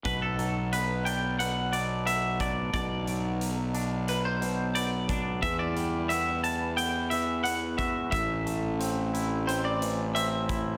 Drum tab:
HH |xxxxxxxx|xxxxxxxx|xxxxxxxx|xxxxxxxx|
BD |o------o|o------o|o------o|o------o|